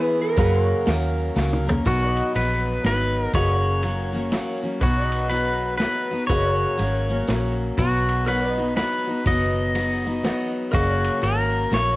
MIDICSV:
0, 0, Header, 1, 7, 480
1, 0, Start_track
1, 0, Key_signature, 5, "major"
1, 0, Tempo, 493016
1, 372, Time_signature, 3, 2, 24, 8
1, 11647, End_track
2, 0, Start_track
2, 0, Title_t, "Pedal steel guitar"
2, 0, Program_c, 0, 26
2, 0, Note_on_c, 0, 68, 67
2, 0, Note_on_c, 0, 71, 69
2, 0, Note_on_c, 0, 76, 69
2, 354, Note_off_c, 0, 68, 0
2, 356, Note_off_c, 0, 71, 0
2, 364, Note_off_c, 0, 76, 0
2, 370, Note_on_c, 0, 70, 74
2, 382, Note_on_c, 0, 71, 68
2, 394, Note_on_c, 0, 78, 67
2, 625, Note_off_c, 0, 71, 0
2, 625, Note_on_c, 0, 73, 68
2, 1794, Note_off_c, 0, 70, 0
2, 1800, Note_off_c, 0, 73, 0
2, 1806, Note_off_c, 0, 78, 0
2, 1814, Note_on_c, 0, 70, 59
2, 1830, Note_on_c, 0, 73, 64
2, 1841, Note_on_c, 0, 78, 61
2, 2009, Note_off_c, 0, 70, 0
2, 2009, Note_on_c, 0, 71, 59
2, 2073, Note_off_c, 0, 73, 0
2, 2073, Note_on_c, 0, 75, 64
2, 3237, Note_off_c, 0, 71, 0
2, 3245, Note_off_c, 0, 75, 0
2, 3251, Note_off_c, 0, 78, 0
2, 3262, Note_on_c, 0, 71, 61
2, 3269, Note_on_c, 0, 75, 67
2, 3277, Note_on_c, 0, 78, 62
2, 3457, Note_off_c, 0, 71, 0
2, 3457, Note_on_c, 0, 70, 61
2, 3512, Note_off_c, 0, 75, 0
2, 3512, Note_on_c, 0, 73, 67
2, 4681, Note_off_c, 0, 70, 0
2, 4684, Note_on_c, 0, 71, 62
2, 4686, Note_off_c, 0, 73, 0
2, 4690, Note_off_c, 0, 78, 0
2, 4695, Note_on_c, 0, 73, 61
2, 4708, Note_on_c, 0, 78, 63
2, 4938, Note_off_c, 0, 73, 0
2, 4938, Note_on_c, 0, 75, 61
2, 6114, Note_off_c, 0, 71, 0
2, 6119, Note_off_c, 0, 75, 0
2, 6126, Note_off_c, 0, 78, 0
2, 6129, Note_on_c, 0, 71, 63
2, 6142, Note_on_c, 0, 75, 61
2, 6151, Note_on_c, 0, 78, 62
2, 6324, Note_off_c, 0, 71, 0
2, 6324, Note_on_c, 0, 70, 63
2, 6386, Note_off_c, 0, 75, 0
2, 6386, Note_on_c, 0, 73, 61
2, 7557, Note_off_c, 0, 70, 0
2, 7563, Note_off_c, 0, 73, 0
2, 7568, Note_off_c, 0, 78, 0
2, 8046, Note_on_c, 0, 70, 62
2, 8058, Note_on_c, 0, 73, 63
2, 8069, Note_on_c, 0, 78, 67
2, 8241, Note_off_c, 0, 70, 0
2, 8241, Note_on_c, 0, 71, 62
2, 8301, Note_off_c, 0, 73, 0
2, 8301, Note_on_c, 0, 75, 63
2, 10425, Note_off_c, 0, 71, 0
2, 10431, Note_off_c, 0, 75, 0
2, 10433, Note_on_c, 0, 70, 68
2, 10436, Note_off_c, 0, 78, 0
2, 10446, Note_on_c, 0, 75, 65
2, 10459, Note_on_c, 0, 78, 60
2, 10689, Note_off_c, 0, 75, 0
2, 10689, Note_on_c, 0, 73, 65
2, 11647, Note_off_c, 0, 70, 0
2, 11647, Note_off_c, 0, 73, 0
2, 11647, Note_off_c, 0, 78, 0
2, 11647, End_track
3, 0, Start_track
3, 0, Title_t, "Pedal steel guitar"
3, 0, Program_c, 1, 26
3, 1822, Note_on_c, 1, 66, 73
3, 2263, Note_off_c, 1, 66, 0
3, 2298, Note_on_c, 1, 71, 78
3, 2778, Note_off_c, 1, 71, 0
3, 2790, Note_on_c, 1, 71, 82
3, 3150, Note_off_c, 1, 71, 0
3, 3150, Note_on_c, 1, 70, 82
3, 3256, Note_off_c, 1, 70, 0
3, 3260, Note_on_c, 1, 73, 91
3, 4475, Note_off_c, 1, 73, 0
3, 4703, Note_on_c, 1, 66, 75
3, 5156, Note_on_c, 1, 71, 86
3, 5191, Note_off_c, 1, 66, 0
3, 5611, Note_off_c, 1, 71, 0
3, 5623, Note_on_c, 1, 71, 90
3, 6100, Note_off_c, 1, 71, 0
3, 6104, Note_on_c, 1, 73, 97
3, 7338, Note_off_c, 1, 73, 0
3, 7581, Note_on_c, 1, 66, 74
3, 8065, Note_on_c, 1, 71, 81
3, 8071, Note_off_c, 1, 66, 0
3, 8527, Note_off_c, 1, 71, 0
3, 8538, Note_on_c, 1, 71, 88
3, 9022, Note_off_c, 1, 71, 0
3, 9026, Note_on_c, 1, 75, 94
3, 10239, Note_off_c, 1, 75, 0
3, 10461, Note_on_c, 1, 66, 89
3, 10934, Note_on_c, 1, 70, 89
3, 10951, Note_off_c, 1, 66, 0
3, 11427, Note_off_c, 1, 70, 0
3, 11429, Note_on_c, 1, 73, 100
3, 11647, Note_off_c, 1, 73, 0
3, 11647, End_track
4, 0, Start_track
4, 0, Title_t, "Clean electric guitar"
4, 0, Program_c, 2, 27
4, 0, Note_on_c, 2, 71, 88
4, 204, Note_off_c, 2, 71, 0
4, 209, Note_on_c, 2, 70, 76
4, 1301, Note_off_c, 2, 70, 0
4, 11647, End_track
5, 0, Start_track
5, 0, Title_t, "Steel-string acoustic guitar"
5, 0, Program_c, 3, 25
5, 0, Note_on_c, 3, 52, 62
5, 0, Note_on_c, 3, 59, 69
5, 0, Note_on_c, 3, 64, 68
5, 0, Note_on_c, 3, 68, 70
5, 354, Note_on_c, 3, 42, 75
5, 356, Note_on_c, 3, 49, 79
5, 360, Note_off_c, 3, 52, 0
5, 362, Note_off_c, 3, 59, 0
5, 364, Note_on_c, 3, 54, 72
5, 366, Note_off_c, 3, 64, 0
5, 366, Note_on_c, 3, 58, 81
5, 369, Note_off_c, 3, 68, 0
5, 370, Note_on_c, 3, 61, 84
5, 373, Note_on_c, 3, 70, 89
5, 822, Note_off_c, 3, 54, 0
5, 832, Note_off_c, 3, 58, 0
5, 833, Note_on_c, 3, 54, 64
5, 839, Note_off_c, 3, 61, 0
5, 842, Note_off_c, 3, 42, 0
5, 843, Note_off_c, 3, 49, 0
5, 844, Note_on_c, 3, 58, 66
5, 845, Note_off_c, 3, 70, 0
5, 851, Note_on_c, 3, 61, 65
5, 856, Note_on_c, 3, 70, 79
5, 1306, Note_off_c, 3, 54, 0
5, 1314, Note_off_c, 3, 58, 0
5, 1318, Note_on_c, 3, 54, 65
5, 1321, Note_off_c, 3, 61, 0
5, 1326, Note_on_c, 3, 58, 67
5, 1333, Note_off_c, 3, 70, 0
5, 1333, Note_on_c, 3, 61, 74
5, 1344, Note_on_c, 3, 70, 74
5, 1610, Note_off_c, 3, 70, 0
5, 1621, Note_off_c, 3, 61, 0
5, 1622, Note_off_c, 3, 54, 0
5, 1622, Note_on_c, 3, 70, 51
5, 1626, Note_off_c, 3, 58, 0
5, 1633, Note_on_c, 3, 61, 47
5, 1638, Note_on_c, 3, 58, 49
5, 1644, Note_on_c, 3, 54, 46
5, 1792, Note_off_c, 3, 54, 0
5, 1801, Note_on_c, 3, 47, 65
5, 1804, Note_on_c, 3, 54, 67
5, 1807, Note_off_c, 3, 70, 0
5, 1810, Note_off_c, 3, 58, 0
5, 1811, Note_off_c, 3, 61, 0
5, 1814, Note_on_c, 3, 59, 73
5, 1815, Note_on_c, 3, 63, 75
5, 1819, Note_on_c, 3, 66, 73
5, 2279, Note_off_c, 3, 54, 0
5, 2282, Note_off_c, 3, 59, 0
5, 2283, Note_on_c, 3, 54, 55
5, 2285, Note_off_c, 3, 47, 0
5, 2292, Note_off_c, 3, 63, 0
5, 2294, Note_on_c, 3, 59, 55
5, 2302, Note_on_c, 3, 63, 59
5, 2303, Note_off_c, 3, 66, 0
5, 2307, Note_on_c, 3, 66, 64
5, 2756, Note_off_c, 3, 54, 0
5, 2756, Note_off_c, 3, 59, 0
5, 2760, Note_on_c, 3, 54, 54
5, 2767, Note_off_c, 3, 63, 0
5, 2768, Note_on_c, 3, 59, 52
5, 2778, Note_on_c, 3, 63, 60
5, 2779, Note_off_c, 3, 66, 0
5, 2783, Note_on_c, 3, 66, 57
5, 3248, Note_on_c, 3, 42, 63
5, 3249, Note_off_c, 3, 59, 0
5, 3250, Note_on_c, 3, 49, 78
5, 3252, Note_off_c, 3, 54, 0
5, 3254, Note_off_c, 3, 63, 0
5, 3255, Note_on_c, 3, 58, 78
5, 3256, Note_on_c, 3, 54, 74
5, 3260, Note_off_c, 3, 66, 0
5, 3261, Note_on_c, 3, 61, 74
5, 3264, Note_on_c, 3, 66, 77
5, 3721, Note_off_c, 3, 54, 0
5, 3722, Note_off_c, 3, 58, 0
5, 3724, Note_on_c, 3, 54, 59
5, 3729, Note_off_c, 3, 42, 0
5, 3729, Note_off_c, 3, 61, 0
5, 3730, Note_off_c, 3, 49, 0
5, 3734, Note_on_c, 3, 58, 56
5, 3741, Note_on_c, 3, 61, 63
5, 3748, Note_off_c, 3, 66, 0
5, 3752, Note_on_c, 3, 66, 55
5, 4008, Note_off_c, 3, 66, 0
5, 4020, Note_off_c, 3, 61, 0
5, 4020, Note_on_c, 3, 66, 55
5, 4024, Note_off_c, 3, 58, 0
5, 4026, Note_off_c, 3, 54, 0
5, 4031, Note_on_c, 3, 61, 52
5, 4036, Note_on_c, 3, 58, 43
5, 4042, Note_on_c, 3, 54, 43
5, 4201, Note_off_c, 3, 54, 0
5, 4206, Note_off_c, 3, 66, 0
5, 4211, Note_off_c, 3, 58, 0
5, 4211, Note_off_c, 3, 61, 0
5, 4213, Note_on_c, 3, 54, 61
5, 4223, Note_on_c, 3, 58, 61
5, 4226, Note_on_c, 3, 61, 64
5, 4235, Note_on_c, 3, 66, 70
5, 4493, Note_off_c, 3, 66, 0
5, 4500, Note_off_c, 3, 61, 0
5, 4504, Note_on_c, 3, 66, 55
5, 4510, Note_off_c, 3, 54, 0
5, 4512, Note_off_c, 3, 58, 0
5, 4512, Note_on_c, 3, 61, 47
5, 4523, Note_on_c, 3, 58, 43
5, 4528, Note_on_c, 3, 54, 40
5, 4677, Note_off_c, 3, 54, 0
5, 4683, Note_on_c, 3, 47, 67
5, 4688, Note_off_c, 3, 66, 0
5, 4689, Note_on_c, 3, 54, 77
5, 4691, Note_off_c, 3, 58, 0
5, 4692, Note_off_c, 3, 61, 0
5, 4695, Note_on_c, 3, 59, 77
5, 4696, Note_on_c, 3, 63, 86
5, 4703, Note_on_c, 3, 66, 72
5, 5153, Note_off_c, 3, 54, 0
5, 5155, Note_off_c, 3, 59, 0
5, 5157, Note_on_c, 3, 54, 53
5, 5162, Note_off_c, 3, 63, 0
5, 5167, Note_off_c, 3, 47, 0
5, 5167, Note_on_c, 3, 59, 57
5, 5173, Note_on_c, 3, 63, 59
5, 5174, Note_off_c, 3, 66, 0
5, 5178, Note_on_c, 3, 66, 60
5, 5628, Note_off_c, 3, 54, 0
5, 5632, Note_off_c, 3, 59, 0
5, 5632, Note_on_c, 3, 54, 55
5, 5643, Note_off_c, 3, 63, 0
5, 5643, Note_on_c, 3, 59, 60
5, 5655, Note_on_c, 3, 63, 64
5, 5658, Note_off_c, 3, 66, 0
5, 5662, Note_on_c, 3, 66, 61
5, 5938, Note_off_c, 3, 66, 0
5, 5940, Note_off_c, 3, 54, 0
5, 5946, Note_off_c, 3, 59, 0
5, 5949, Note_on_c, 3, 66, 41
5, 5952, Note_off_c, 3, 63, 0
5, 5962, Note_on_c, 3, 63, 41
5, 5972, Note_on_c, 3, 59, 33
5, 6125, Note_off_c, 3, 66, 0
5, 6125, Note_on_c, 3, 42, 75
5, 6126, Note_on_c, 3, 49, 74
5, 6128, Note_off_c, 3, 59, 0
5, 6128, Note_on_c, 3, 54, 77
5, 6131, Note_off_c, 3, 63, 0
5, 6132, Note_on_c, 3, 58, 76
5, 6135, Note_on_c, 3, 61, 73
5, 6137, Note_on_c, 3, 66, 79
5, 6594, Note_off_c, 3, 54, 0
5, 6597, Note_on_c, 3, 54, 53
5, 6598, Note_off_c, 3, 58, 0
5, 6607, Note_off_c, 3, 61, 0
5, 6608, Note_off_c, 3, 42, 0
5, 6609, Note_off_c, 3, 49, 0
5, 6609, Note_on_c, 3, 58, 54
5, 6618, Note_on_c, 3, 61, 56
5, 6621, Note_off_c, 3, 66, 0
5, 6625, Note_on_c, 3, 66, 65
5, 6891, Note_off_c, 3, 66, 0
5, 6903, Note_off_c, 3, 54, 0
5, 6903, Note_on_c, 3, 66, 51
5, 6904, Note_off_c, 3, 61, 0
5, 6909, Note_off_c, 3, 58, 0
5, 6915, Note_on_c, 3, 61, 50
5, 6920, Note_on_c, 3, 58, 41
5, 6930, Note_on_c, 3, 54, 42
5, 7071, Note_off_c, 3, 54, 0
5, 7082, Note_off_c, 3, 58, 0
5, 7082, Note_on_c, 3, 54, 63
5, 7088, Note_off_c, 3, 61, 0
5, 7088, Note_off_c, 3, 66, 0
5, 7093, Note_on_c, 3, 58, 60
5, 7099, Note_on_c, 3, 61, 61
5, 7109, Note_on_c, 3, 66, 62
5, 7572, Note_on_c, 3, 47, 68
5, 7573, Note_off_c, 3, 58, 0
5, 7574, Note_off_c, 3, 54, 0
5, 7576, Note_off_c, 3, 61, 0
5, 7578, Note_on_c, 3, 54, 67
5, 7585, Note_on_c, 3, 59, 73
5, 7588, Note_off_c, 3, 66, 0
5, 7588, Note_on_c, 3, 63, 78
5, 7592, Note_on_c, 3, 66, 80
5, 8048, Note_off_c, 3, 54, 0
5, 8052, Note_off_c, 3, 47, 0
5, 8052, Note_off_c, 3, 59, 0
5, 8052, Note_on_c, 3, 54, 54
5, 8055, Note_off_c, 3, 63, 0
5, 8064, Note_on_c, 3, 59, 59
5, 8067, Note_on_c, 3, 63, 55
5, 8070, Note_off_c, 3, 66, 0
5, 8074, Note_on_c, 3, 66, 62
5, 8339, Note_off_c, 3, 66, 0
5, 8350, Note_on_c, 3, 66, 46
5, 8351, Note_off_c, 3, 54, 0
5, 8352, Note_off_c, 3, 63, 0
5, 8356, Note_off_c, 3, 59, 0
5, 8364, Note_on_c, 3, 63, 42
5, 8372, Note_on_c, 3, 59, 38
5, 8532, Note_off_c, 3, 66, 0
5, 8533, Note_off_c, 3, 59, 0
5, 8533, Note_on_c, 3, 54, 52
5, 8539, Note_off_c, 3, 63, 0
5, 8545, Note_on_c, 3, 59, 63
5, 8556, Note_on_c, 3, 63, 56
5, 8558, Note_on_c, 3, 66, 58
5, 8822, Note_off_c, 3, 66, 0
5, 8831, Note_off_c, 3, 54, 0
5, 8833, Note_on_c, 3, 66, 45
5, 8837, Note_off_c, 3, 59, 0
5, 8838, Note_off_c, 3, 63, 0
5, 8850, Note_on_c, 3, 63, 44
5, 8860, Note_on_c, 3, 59, 37
5, 9011, Note_off_c, 3, 59, 0
5, 9014, Note_off_c, 3, 63, 0
5, 9014, Note_off_c, 3, 66, 0
5, 9014, Note_on_c, 3, 47, 71
5, 9022, Note_on_c, 3, 54, 70
5, 9023, Note_on_c, 3, 59, 72
5, 9026, Note_on_c, 3, 63, 79
5, 9034, Note_on_c, 3, 66, 78
5, 9484, Note_off_c, 3, 54, 0
5, 9485, Note_off_c, 3, 59, 0
5, 9488, Note_on_c, 3, 54, 62
5, 9490, Note_off_c, 3, 63, 0
5, 9493, Note_off_c, 3, 47, 0
5, 9496, Note_on_c, 3, 59, 58
5, 9501, Note_on_c, 3, 63, 62
5, 9507, Note_off_c, 3, 66, 0
5, 9511, Note_on_c, 3, 66, 60
5, 9769, Note_off_c, 3, 66, 0
5, 9781, Note_on_c, 3, 66, 52
5, 9788, Note_off_c, 3, 63, 0
5, 9789, Note_off_c, 3, 54, 0
5, 9793, Note_off_c, 3, 59, 0
5, 9799, Note_on_c, 3, 63, 47
5, 9805, Note_on_c, 3, 59, 44
5, 9963, Note_off_c, 3, 59, 0
5, 9964, Note_on_c, 3, 54, 65
5, 9967, Note_off_c, 3, 66, 0
5, 9968, Note_off_c, 3, 63, 0
5, 9975, Note_on_c, 3, 59, 71
5, 9980, Note_on_c, 3, 63, 75
5, 9986, Note_on_c, 3, 66, 67
5, 10439, Note_on_c, 3, 42, 66
5, 10443, Note_off_c, 3, 54, 0
5, 10445, Note_on_c, 3, 49, 71
5, 10447, Note_off_c, 3, 59, 0
5, 10447, Note_on_c, 3, 54, 71
5, 10451, Note_on_c, 3, 58, 80
5, 10452, Note_off_c, 3, 66, 0
5, 10454, Note_off_c, 3, 63, 0
5, 10456, Note_on_c, 3, 66, 78
5, 10458, Note_on_c, 3, 61, 84
5, 10915, Note_off_c, 3, 54, 0
5, 10916, Note_off_c, 3, 58, 0
5, 10919, Note_on_c, 3, 54, 53
5, 10925, Note_off_c, 3, 42, 0
5, 10927, Note_off_c, 3, 61, 0
5, 10928, Note_off_c, 3, 49, 0
5, 10928, Note_on_c, 3, 58, 60
5, 10938, Note_off_c, 3, 66, 0
5, 10939, Note_on_c, 3, 61, 58
5, 10942, Note_on_c, 3, 66, 60
5, 11391, Note_off_c, 3, 54, 0
5, 11395, Note_off_c, 3, 58, 0
5, 11395, Note_on_c, 3, 54, 53
5, 11401, Note_off_c, 3, 61, 0
5, 11407, Note_on_c, 3, 58, 61
5, 11413, Note_on_c, 3, 61, 61
5, 11418, Note_off_c, 3, 66, 0
5, 11422, Note_on_c, 3, 66, 62
5, 11647, Note_off_c, 3, 54, 0
5, 11647, Note_off_c, 3, 58, 0
5, 11647, Note_off_c, 3, 61, 0
5, 11647, Note_off_c, 3, 66, 0
5, 11647, End_track
6, 0, Start_track
6, 0, Title_t, "Fingered electric bass"
6, 0, Program_c, 4, 33
6, 367, Note_on_c, 4, 42, 91
6, 706, Note_off_c, 4, 42, 0
6, 848, Note_on_c, 4, 39, 83
6, 1257, Note_off_c, 4, 39, 0
6, 1325, Note_on_c, 4, 37, 80
6, 1735, Note_off_c, 4, 37, 0
6, 1811, Note_on_c, 4, 35, 80
6, 2148, Note_off_c, 4, 35, 0
6, 2293, Note_on_c, 4, 34, 72
6, 2699, Note_off_c, 4, 34, 0
6, 2766, Note_on_c, 4, 32, 70
6, 3176, Note_off_c, 4, 32, 0
6, 3250, Note_on_c, 4, 30, 84
6, 4263, Note_off_c, 4, 30, 0
6, 4683, Note_on_c, 4, 35, 83
6, 5700, Note_off_c, 4, 35, 0
6, 6129, Note_on_c, 4, 30, 92
6, 6468, Note_off_c, 4, 30, 0
6, 6613, Note_on_c, 4, 32, 80
6, 7021, Note_off_c, 4, 32, 0
6, 7092, Note_on_c, 4, 34, 72
6, 7500, Note_off_c, 4, 34, 0
6, 7575, Note_on_c, 4, 35, 80
6, 8588, Note_off_c, 4, 35, 0
6, 9012, Note_on_c, 4, 30, 77
6, 10025, Note_off_c, 4, 30, 0
6, 10452, Note_on_c, 4, 30, 87
6, 10790, Note_off_c, 4, 30, 0
6, 10932, Note_on_c, 4, 32, 73
6, 11340, Note_off_c, 4, 32, 0
6, 11408, Note_on_c, 4, 34, 70
6, 11647, Note_off_c, 4, 34, 0
6, 11647, End_track
7, 0, Start_track
7, 0, Title_t, "Drums"
7, 362, Note_on_c, 9, 51, 56
7, 365, Note_on_c, 9, 36, 100
7, 459, Note_off_c, 9, 51, 0
7, 462, Note_off_c, 9, 36, 0
7, 845, Note_on_c, 9, 38, 89
7, 845, Note_on_c, 9, 51, 60
7, 942, Note_off_c, 9, 38, 0
7, 942, Note_off_c, 9, 51, 0
7, 1326, Note_on_c, 9, 38, 59
7, 1423, Note_off_c, 9, 38, 0
7, 1488, Note_on_c, 9, 47, 67
7, 1586, Note_off_c, 9, 47, 0
7, 1644, Note_on_c, 9, 43, 102
7, 1741, Note_off_c, 9, 43, 0
7, 1805, Note_on_c, 9, 51, 57
7, 1808, Note_on_c, 9, 36, 91
7, 1902, Note_off_c, 9, 51, 0
7, 1906, Note_off_c, 9, 36, 0
7, 2107, Note_on_c, 9, 51, 55
7, 2204, Note_off_c, 9, 51, 0
7, 2291, Note_on_c, 9, 51, 59
7, 2388, Note_off_c, 9, 51, 0
7, 2768, Note_on_c, 9, 38, 79
7, 2768, Note_on_c, 9, 51, 54
7, 2865, Note_off_c, 9, 38, 0
7, 2865, Note_off_c, 9, 51, 0
7, 3245, Note_on_c, 9, 51, 58
7, 3249, Note_on_c, 9, 36, 90
7, 3343, Note_off_c, 9, 51, 0
7, 3346, Note_off_c, 9, 36, 0
7, 3726, Note_on_c, 9, 51, 56
7, 3823, Note_off_c, 9, 51, 0
7, 4203, Note_on_c, 9, 38, 68
7, 4203, Note_on_c, 9, 51, 53
7, 4300, Note_off_c, 9, 38, 0
7, 4300, Note_off_c, 9, 51, 0
7, 4681, Note_on_c, 9, 51, 50
7, 4687, Note_on_c, 9, 36, 97
7, 4778, Note_off_c, 9, 51, 0
7, 4784, Note_off_c, 9, 36, 0
7, 4983, Note_on_c, 9, 51, 54
7, 5080, Note_off_c, 9, 51, 0
7, 5163, Note_on_c, 9, 51, 57
7, 5261, Note_off_c, 9, 51, 0
7, 5644, Note_on_c, 9, 38, 75
7, 5644, Note_on_c, 9, 51, 53
7, 5742, Note_off_c, 9, 38, 0
7, 5742, Note_off_c, 9, 51, 0
7, 6127, Note_on_c, 9, 51, 53
7, 6129, Note_on_c, 9, 36, 92
7, 6224, Note_off_c, 9, 51, 0
7, 6227, Note_off_c, 9, 36, 0
7, 6610, Note_on_c, 9, 51, 62
7, 6707, Note_off_c, 9, 51, 0
7, 7090, Note_on_c, 9, 38, 81
7, 7090, Note_on_c, 9, 51, 57
7, 7187, Note_off_c, 9, 38, 0
7, 7187, Note_off_c, 9, 51, 0
7, 7571, Note_on_c, 9, 51, 54
7, 7573, Note_on_c, 9, 36, 101
7, 7668, Note_off_c, 9, 51, 0
7, 7671, Note_off_c, 9, 36, 0
7, 7872, Note_on_c, 9, 51, 54
7, 7970, Note_off_c, 9, 51, 0
7, 8053, Note_on_c, 9, 51, 57
7, 8150, Note_off_c, 9, 51, 0
7, 8533, Note_on_c, 9, 38, 73
7, 8533, Note_on_c, 9, 51, 49
7, 8631, Note_off_c, 9, 38, 0
7, 8631, Note_off_c, 9, 51, 0
7, 9012, Note_on_c, 9, 51, 58
7, 9013, Note_on_c, 9, 36, 93
7, 9109, Note_off_c, 9, 51, 0
7, 9111, Note_off_c, 9, 36, 0
7, 9492, Note_on_c, 9, 51, 58
7, 9589, Note_off_c, 9, 51, 0
7, 9973, Note_on_c, 9, 38, 79
7, 9973, Note_on_c, 9, 51, 57
7, 10070, Note_off_c, 9, 38, 0
7, 10070, Note_off_c, 9, 51, 0
7, 10452, Note_on_c, 9, 36, 101
7, 10453, Note_on_c, 9, 51, 58
7, 10549, Note_off_c, 9, 36, 0
7, 10550, Note_off_c, 9, 51, 0
7, 10753, Note_on_c, 9, 51, 62
7, 10850, Note_off_c, 9, 51, 0
7, 10936, Note_on_c, 9, 51, 60
7, 11034, Note_off_c, 9, 51, 0
7, 11417, Note_on_c, 9, 38, 74
7, 11417, Note_on_c, 9, 51, 61
7, 11514, Note_off_c, 9, 38, 0
7, 11514, Note_off_c, 9, 51, 0
7, 11647, End_track
0, 0, End_of_file